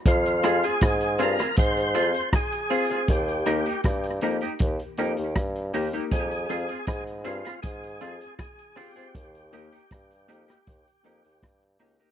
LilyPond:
<<
  \new Staff \with { instrumentName = "Tonewheel organ" } { \time 4/4 \key f \minor \tempo 4 = 79 f'8. aes'8. bes'8 c''4 aes'4 | g'4 r2. | aes'4 aes'8 f'8 aes'4 aes'8 g'8~ | g'2. r4 | }
  \new Staff \with { instrumentName = "Upright piano" } { \time 4/4 \key f \minor r8 <c' f' aes' c''>16 r8. <c' f' aes' c''>16 r8 <aes' c''>16 <c' f' aes' c''>16 r8. <c' f' aes' c''>16 <c' f' aes' c''>16 | r8 <bes ees' g' bes'>16 r8. <bes ees' g' bes'>16 r8 <g' bes'>16 <bes ees' g' bes'>16 r8. <bes ees' g' bes'>16 <bes ees' g' bes'>16 | r8 <c' f' aes' c''>16 r8. <c' f' aes' c''>16 r8 <aes' c''>16 <c' f' aes' c''>16 r8. <c' f' aes' c''>16 <c' f' aes' c''>16 | r8 <bes ees' g' bes'>16 r8. <bes ees' g' bes'>16 r8 <g' bes'>16 <bes ees' g' bes'>16 r8. <bes ees' g' bes'>16 <bes ees' g' bes'>16 | }
  \new Staff \with { instrumentName = "Clean electric guitar" } { \time 4/4 \key f \minor r8 <c' f' aes'>16 <c' f' aes'>16 r8 <c' f' aes'>16 <c' f' aes'>16 r8 <c' f' aes'>16 r8. <c' f' aes'>16 <c' f' aes'>16 | r8 <bes ees' g'>16 <bes ees' g'>16 r8 <bes ees' g'>16 <bes ees' g'>16 r8 <bes ees' g'>16 r8. <bes ees' g'>16 <bes ees' g'>16 | r8 <c' f' aes'>16 <c' f' aes'>16 r8 <c' f' aes'>16 <c' f' aes'>16 r8 <c' f' aes'>16 r8. <c' f' aes'>16 <c' f' aes'>16 | r8 <bes ees' g'>16 <bes ees' g'>16 r8 <bes ees' g'>16 <bes ees' g'>16 r8 <bes ees' g'>16 r8. <bes ees' g'>16 <bes ees' g'>16 | }
  \new Staff \with { instrumentName = "Bassoon" } { \clef bass \time 4/4 \key f \minor f,8 f,16 r16 aes,8 g,16 r16 aes,8 f,16 r4 r16 | ees,8 ees,16 r16 g,8 f,16 r16 ees,16 r16 f,16 ees,16 g,8 ees,16 r16 | f,8 f,16 r16 aes,8 g,16 r16 aes,8 f,16 r4 r16 | ees,8 ees,16 r16 g,8 f,16 r16 ees,16 r16 f,16 ees,16 g,8 des,16 r16 | }
  \new DrumStaff \with { instrumentName = "Drums" } \drummode { \time 4/4 <hh bd>16 hh16 <hh ss>16 hh16 <hh bd ss>16 hh16 hh16 <hh ss>16 <hh bd>16 hh16 hh16 hh16 <hh bd ss>16 hh16 hho16 hh16 | <hh bd>16 hh16 <hh ss>16 hh16 <hh bd ss>16 hh16 hh16 hh16 <hh bd>16 hh16 hh16 hh16 <hh bd ss>16 hh16 hho16 hh16 | <hh bd>16 hh16 hh16 hh16 <hh bd ss>16 hh16 hh16 <hh ss>16 <hh bd>16 hh16 hh16 hh16 <hh bd ss>16 hh16 hho16 hh16 | <hh bd>16 hh16 hh16 hh16 <hh bd ss>16 hh16 hh16 <hh ss>16 <hh bd>16 hh16 hh16 hh16 <hh bd ss>16 hh16 hho16 hh16 | }
>>